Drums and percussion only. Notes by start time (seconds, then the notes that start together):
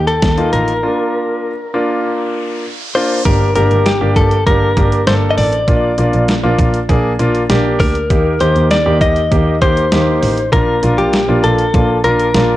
0.07 closed hi-hat
0.22 kick, snare, closed hi-hat
0.38 closed hi-hat
0.53 closed hi-hat
0.68 closed hi-hat
3.25 kick, closed hi-hat
3.55 closed hi-hat
3.71 closed hi-hat
3.86 snare, closed hi-hat
4.16 kick, closed hi-hat
4.31 closed hi-hat
4.47 kick, closed hi-hat
4.77 kick, closed hi-hat
4.92 closed hi-hat
5.07 snare, closed hi-hat
5.38 open hi-hat
5.53 closed hi-hat
5.68 kick, closed hi-hat
5.98 closed hi-hat
6.13 closed hi-hat
6.28 snare, closed hi-hat
6.59 kick, closed hi-hat
6.74 closed hi-hat
6.89 kick, closed hi-hat
7.19 closed hi-hat
7.35 closed hi-hat
7.50 snare, closed hi-hat
7.80 kick, open hi-hat
7.95 closed hi-hat
8.10 kick, closed hi-hat
8.40 closed hi-hat
8.56 closed hi-hat
8.71 snare, closed hi-hat
9.01 kick, closed hi-hat
9.16 closed hi-hat
9.32 kick, closed hi-hat
9.62 kick, closed hi-hat
9.77 closed hi-hat
9.92 snare, closed hi-hat
10.23 open hi-hat
10.38 closed hi-hat
10.53 kick, closed hi-hat
10.83 closed hi-hat
10.98 closed hi-hat
11.13 snare, closed hi-hat
11.44 closed hi-hat
11.59 closed hi-hat
11.74 kick, closed hi-hat
12.04 closed hi-hat
12.20 closed hi-hat
12.34 snare, closed hi-hat